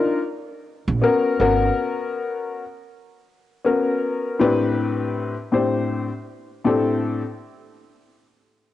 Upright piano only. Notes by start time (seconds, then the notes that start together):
Already playing: D4 D#4 F4 A#4
1.02 B3 C#4 F#4 A#4
1.40 B3 C#4 F#4 A#4
3.65 B3 C#4 F#4 A#4
4.39 A2 C4 D4 G4 B4
5.52 A2 C4 D4 G4 C5
6.64 A2 C4 D4 G4 A4